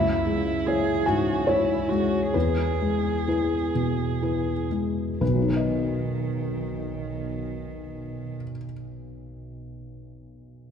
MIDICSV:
0, 0, Header, 1, 3, 480
1, 0, Start_track
1, 0, Key_signature, 5, "major"
1, 0, Tempo, 803213
1, 887, Tempo, 860832
1, 1367, Time_signature, 3, 2, 24, 8
1, 1367, Tempo, 920245
1, 1847, Tempo, 949367
1, 2327, Tempo, 995025
1, 5461, End_track
2, 0, Start_track
2, 0, Title_t, "Cello"
2, 0, Program_c, 0, 42
2, 0, Note_on_c, 0, 64, 55
2, 398, Note_on_c, 0, 68, 54
2, 407, Note_off_c, 0, 64, 0
2, 633, Note_on_c, 0, 66, 49
2, 642, Note_off_c, 0, 68, 0
2, 882, Note_on_c, 0, 64, 47
2, 891, Note_off_c, 0, 66, 0
2, 1114, Note_on_c, 0, 66, 43
2, 1122, Note_off_c, 0, 64, 0
2, 1360, Note_off_c, 0, 66, 0
2, 1363, Note_on_c, 0, 68, 47
2, 2545, Note_off_c, 0, 68, 0
2, 2798, Note_on_c, 0, 51, 42
2, 4318, Note_off_c, 0, 51, 0
2, 5461, End_track
3, 0, Start_track
3, 0, Title_t, "Felt piano"
3, 0, Program_c, 1, 0
3, 0, Note_on_c, 1, 37, 46
3, 0, Note_on_c, 1, 76, 73
3, 28, Control_c, 1, 64, 127
3, 160, Note_on_c, 1, 56, 39
3, 405, Note_on_c, 1, 64, 36
3, 407, Note_on_c, 1, 73, 37
3, 543, Note_off_c, 1, 56, 0
3, 617, Note_off_c, 1, 76, 0
3, 619, Note_off_c, 1, 64, 0
3, 621, Note_off_c, 1, 73, 0
3, 634, Note_on_c, 1, 80, 57
3, 648, Note_on_c, 1, 44, 37
3, 866, Note_off_c, 1, 80, 0
3, 878, Note_on_c, 1, 73, 56
3, 891, Note_on_c, 1, 64, 40
3, 1030, Note_off_c, 1, 44, 0
3, 1102, Note_off_c, 1, 64, 0
3, 1128, Note_on_c, 1, 56, 33
3, 1341, Note_off_c, 1, 73, 0
3, 1343, Note_off_c, 1, 37, 0
3, 1364, Note_on_c, 1, 71, 48
3, 1370, Note_off_c, 1, 56, 0
3, 1370, Note_on_c, 1, 40, 39
3, 1377, Control_c, 1, 64, 0
3, 1460, Control_c, 1, 64, 127
3, 1612, Note_on_c, 1, 56, 32
3, 1851, Note_off_c, 1, 71, 0
3, 1854, Note_on_c, 1, 64, 30
3, 1859, Note_on_c, 1, 71, 32
3, 1993, Note_off_c, 1, 56, 0
3, 2068, Note_off_c, 1, 64, 0
3, 2070, Note_off_c, 1, 71, 0
3, 2092, Note_on_c, 1, 47, 29
3, 2332, Note_on_c, 1, 64, 28
3, 2335, Note_on_c, 1, 71, 34
3, 2472, Note_off_c, 1, 47, 0
3, 2549, Note_off_c, 1, 64, 0
3, 2550, Note_off_c, 1, 71, 0
3, 2568, Note_on_c, 1, 56, 30
3, 2789, Note_off_c, 1, 40, 0
3, 2806, Note_on_c, 1, 35, 29
3, 2807, Note_off_c, 1, 56, 0
3, 2808, Note_on_c, 1, 71, 49
3, 2818, Control_c, 1, 64, 0
3, 2842, Note_on_c, 1, 47, 29
3, 2875, Note_on_c, 1, 54, 29
3, 2908, Note_on_c, 1, 63, 30
3, 2935, Note_off_c, 1, 71, 0
3, 2935, Control_c, 1, 64, 127
3, 2942, Note_on_c, 1, 71, 29
3, 2979, Note_on_c, 1, 75, 30
3, 4325, Note_off_c, 1, 35, 0
3, 4361, Note_off_c, 1, 47, 0
3, 4394, Note_off_c, 1, 54, 0
3, 4428, Note_off_c, 1, 63, 0
3, 4461, Note_off_c, 1, 71, 0
3, 4498, Note_off_c, 1, 75, 0
3, 5461, End_track
0, 0, End_of_file